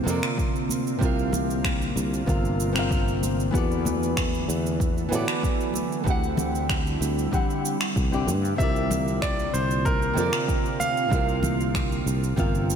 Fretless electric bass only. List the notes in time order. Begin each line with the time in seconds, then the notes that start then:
0.07 F2
1.01 C2
1.96 C2
2.28 G1
3.54 E2
4.49 E2
5.12 A2
6.06 D2
7.01 D2
7.96 C2
8.27 G2
8.59 C2
9.54 C2
10.17 F2
11.12 C2
12.06 C2
12.38 G1